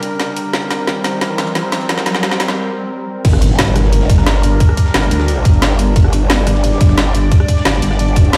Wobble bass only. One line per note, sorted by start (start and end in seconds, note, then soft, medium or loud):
3.25 3.74 G1 loud
3.76 4.08 G1 medium
4.09 4.59 G1 loud
4.94 5.10 G1 loud
5.11 5.44 D2 loud
5.45 5.95 G1 loud
5.96 6.45 G1 loud
6.47 6.79 G1 loud
6.81 7.30 G1 loud
7.65 7.81 G1 loud
7.82 8.32 G1 medium